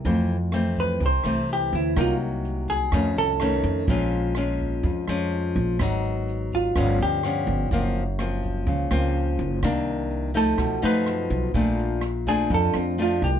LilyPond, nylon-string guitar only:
\new Staff \with { instrumentName = "Nylon-string guitar" } { \time 4/4 \key bes \lydian \tempo 4 = 125 << { <e a c'>8 r8 <e a c'>4 r8 <e a c'>4. | <ges bes ees'>2 <ees a des'>4 <ees a des'>4 | <f aes des'>4 <f aes des'>4. <f aes des'>4. | <ges ces' ees'>2 <f b cis'>4 <f b cis'>4 |
<f bes c'>8 r8 <f bes c'>4. <f bes c'>4. | <ees bes d'>4. <f a ees'>4 <eis a dis'>4. | <f a d'>4 r8 <f a d'>4. <f a d'>8 r8 | } \\ { f,2 c2 | c2 f,2 | bes,2 f,2 | aes,2 g,2 |
ges,2 des2 | c2 b,2 | bes,2 f,2 | } >> }